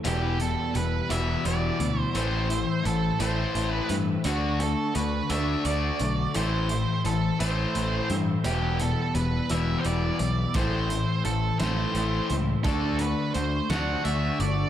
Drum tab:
HH |xxxxxx|xxxxxx|xxxxxx|xxxxxx|
SD |------|------|------|------|
BD |------|------|------|------|

HH |xxxxxx|xxxxxx|xxxxxx|
SD |------|---o--|---o--|
BD |------|o-----|o-----|